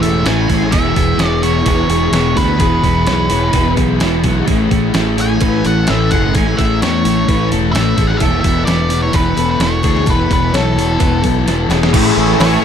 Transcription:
Already playing: A2 E3 A3
0.01 E1 A3 C#4 E4 A4 E5, open hi-hat
0.24 A1 A2 E3 A3 C#4 E4 G#5, snare, open hi-hat
0.28 E3 A3
0.48 A1 A3 C#4 E4 G#4, kick, open hi-hat
0.54 E3
0.62 snare
0.72 E1 E2 E3 G#3 B3 E4 G#4 E5, kick, open hi-hat
0.76 B2 E3
0.94 E1 E3 G#3 B3 E4, kick, open hi-hat
1.00 B2
1.17 E1 E2 B2 E3 G#3 B3 E4 C#5, snare, open hi-hat
1.23 E3 D5
1.42 B2 E3 G#3 B3 E4 C#5, open hi-hat
1.65 E1 E3 G#3 B3 E4 B4, kick, open hi-hat
1.89 E1 G#3 B3 E4 G#4, open hi-hat
2.11 E1 E2 B2 E3 G#3 B3, snare, open hi-hat
2.16 E4
2.35 D2 B2 E3 G#3 B3 E4 F#4 B4, kick, open hi-hat
2.58 E1 E2 B2 E3 G#3 B3 E4 G#4, kick, open hi-hat
2.62 E3
2.82 E1 B2 E3 G#3 B3 E4, kick, open hi-hat
3.06 B1 E2 E3 G#3 B3 E4 C#5, snare, open hi-hat
3.10 B2 E3
3.30 E1 E3 G#3 B3 E4, open hi-hat
3.34 B2
3.51 E1 E3 G#3 B3 E4 B4, kick, open hi-hat
3.76 B1 G#3 B3 E4 G#4, kick, open hi-hat
4.00 E1 E2 B2 E3 G#3 B3 E4, snare, open hi-hat
4.04 E3
4.24 B1 E3 G#3 B3 E4 F#4, kick, open hi-hat
4.28 B2
4.46 A1 A2 E3 A3 C#4 E4 G#4, kick, open hi-hat
4.50 A3
4.70 A1 E3 A3 C#4 E4, kick, open hi-hat
4.93 A1 A2 E3 A3 C#4 E4 C#5, snare, open hi-hat
4.97 A3
5.17 E3 A3 C#4 E4 G#5, open hi-hat
5.40 A1 A2 E3 A3 C#4 E4 B4, kick, open hi-hat
5.64 A1 A3 C#4 E4 A4 F#5, open hi-hat
5.87 A1 A2 E3 A3 C#4 E4 E5, snare, open hi-hat
5.91 A3
6.11 F#1 E3 A3 C#4 E4 G#4 F#5, kick, open hi-hat
6.35 A1 A2 E3 A3 C#4 E4 G#4 G#5, kick, open hi-hat
6.58 A1 A3 C#4 E4 E5, kick, open hi-hat
6.62 E3 A3
6.81 E2 A2 E3 A3 C#4 E4 C#5, snare, open hi-hat
6.86 A3
7.04 A1 E3 A3 C#4 E4, open hi-hat
7.28 A1 A2 E3 A3 C#4 E4 B4, kick, open hi-hat
7.51 E1 A3 C#4 E4 A4, open hi-hat
7.72 A1 A2 E3 A3 C#4 E4 E5, snare, open hi-hat
7.77 A3
7.97 A1 E3 A3 C#4 E4 G#4, kick, open hi-hat
8.07 F#5, snare
8.17 E2 E3 A4 E5, kick, open hi-hat
8.21 E1 B2 E3 A3 B3 E4
8.41 E3 B3 E4 E5, kick, open hi-hat
8.45 E1 B2 A3
8.65 E1 E2 E3 A3 B3 E4 B4 D5, snare, open hi-hat
8.69 B2 E3
8.90 B2 E3 A3 B3 E4, open hi-hat
9.02 C#5
9.13 E1 E3 A3 B3 E4 B4, kick, open hi-hat
9.36 E1 A3 B3 E4 A4, open hi-hat
9.51 B4
9.60 E1 E2 B2 E3 A3 B3 E4 C#5, snare, open hi-hat
9.83 D2 E3 A3 B3 E4 G#4, kick, open hi-hat
9.88 B2
9.97 snare
10.06 E1 E2 B2 E3 A3 B3 E4 A4 B4, kick, open hi-hat
10.10 E3
10.30 E1 B2 E3 A3 B3 E4 B4, kick, open hi-hat
10.52 B1 E2 E3 A3 B3 E4 C#5, snare, open hi-hat
10.56 B2 E3 A4
10.75 E1 E3 A3 B3 E4, open hi-hat
10.80 B2
10.98 E1 E3 A3 B3 E4 B4, kick, open hi-hat
11.21 B1 A3 B3 E4 A4, kick, open hi-hat
11.46 E1 E2 B2 E3 A3 B3 E4, snare, open hi-hat
11.51 E3
11.69 E1 E3 A3 B3 E4 G#4, snare, open hi-hat
11.74 B2
11.83 snare
11.92 A1 A2 E3 A3 C#4 E4 G#4 G#5 C#6 E6, kick, open hi-hat, crash
11.96 A3
12.16 A1 E3 A3
12.39 A1 A2 E3 A3 C#4 E4 C#5, snare, open hi-hat

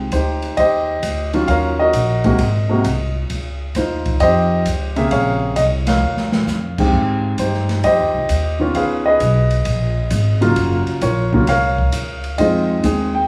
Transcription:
Already playing: C2
0.12 D2 D#4 G4 C5, kick, hi-hat pedal, ride
0.42 ride
0.57 D#2 G4 C5 D#5, kick, ride
1.03 D2, kick, hi-hat pedal, ride
1.33 D#3 F#3 C#4 F4, ride
1.48 D#2 A#4 C#5 F5, kick, ride
1.79 F#4 A#4 D#5
1.93 A#1, kick, hi-hat pedal, ride
2.24 C3 G#3 A#3 F#4, kick, ride
2.38 G#1, kick, ride
2.69 C3 G#3 A#3 F#4
2.84 C2, kick, hi-hat pedal, ride
3.30 C#2, kick, ride
3.75 D#2 D#4 F4 C5, kick, snare, hi-hat pedal, ride
4.05 kick, ride
4.20 F2 G4 C5 D#5, ride
4.66 C#2, kick, hi-hat pedal, ride
4.96 C3 C#3 A#3 G#4 E5, ride
5.11 A#1 G#4 C#5 F5, kick, ride
5.56 C2 D#5, kick, hi-hat pedal, ride
5.87 A#4 C#5 F5, snare, ride
6.02 D#2
6.17 snare
6.32 snare
6.47 F2, snare, hi-hat pedal
6.78 D#3 G#3 C4 G4, kick, crash
6.93 G#2, kick
7.38 G2 D#4 G4 C5, kick, hi-hat pedal, ride
7.54 snare
7.69 snare, ride
7.84 F2 G4 C5 D#5, kick, ride
7.99 D#2
8.14 C2
8.29 D#2, kick, hi-hat pedal, ride
8.59 D#3 B3 C#4 F4
8.74 C#2 G#4 B4 F5, kick, ride
9.06 G#4 B4 D#5
9.20 B1, kick, hi-hat pedal, ride
9.51 ride
9.65 A#1, kick, ride
10.10 G#1, kick, hi-hat pedal, ride
10.41 C#3 F#3 A#3 F4, ride
10.56 F#1, kick, ride
10.87 muted upright bass stroke, ride
11.01 A#1 F4 A#4 C#5, kick, hi-hat pedal, ride
11.33 C#3 F#3 A#3 F4, kick
11.47 C2 A#4 C#5 F5, kick, snare, ride
11.78 kick
11.92 C#2, kick, hi-hat pedal, ride
12.24 ride
12.38 F2 D#3 G#3 C4 F4 G#4 C5 D#5, kick, ride
12.83 D#2 D#3 G#3 C4 G#4, kick, hi-hat pedal, ride
13.15 G5

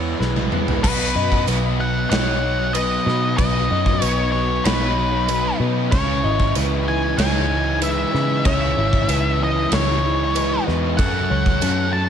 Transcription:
Already playing: E2 E3 G#3 B3 E4 F#4 C#5 E5
0.20 B1 G#3 B4, snare
0.36 high tom
0.51 B3 E4 B4, mid tom
0.68 floor tom
0.83 B1 B2 B4, kick, crash
1.15 F#2 F#3 F#4 D#5
1.32 kick
1.47 B1 B3 D#4 B4, tambourine, crash
1.78 F#3 F#5
2.10 B1 B3 D#4 C#5 F#5, snare, crash
2.42 F#3 D#4
2.73 F#3 B3 B4 D#5, tambourine, crash
3.06 B2 B3 D#4 B4, snare
3.37 B1 B2 B4 D#5, kick, crash
3.70 F#2 F#3 F#4 D#5
3.86 kick
4.02 B1 B3 D#4 B4 C#5, tambourine, crash
4.32 F#3 C#5
4.65 B1 B3 D#4 B4 C#5, snare, crash
4.97 F#3 D#4
5.28 F#3 B3 B4, tambourine, crash
5.60 B2 B3 D#4 B4
5.91 C#2 C#3 C#5, kick, crash
6.23 G#1 E3 E4 D#5
6.40 kick
6.55 C#2 G#3 D#4 B4, tambourine, crash
6.87 E3 G#5
7.18 C#2 G#3 D#4 C#5 G#5, snare, crash
7.50 E3 D#4
7.82 E3 G#3 B4 E5, tambourine, crash
8.13 C#3 G#3 B4, snare
8.45 C#2 C#3 C#5 E5, kick, crash
8.77 G#1 E3 E4 C#5
8.93 kick
9.08 C#2 G#3 D#4 B4, tambourine, crash
9.40 E3 D#5
9.71 C#2 G#3 C#5, snare, crash
10.03 E3 D#4
10.35 E3 G#3 B4, tambourine, crash
10.67 E2 G#3 D#4 B4, snare
10.97 F#2 A4 F#5, kick, crash
11.30 C#2 F#3 F#4 C#5
11.46 kick
11.61 F#2 A3 C#4 A4, tambourine, crash
11.93 F#3 A5

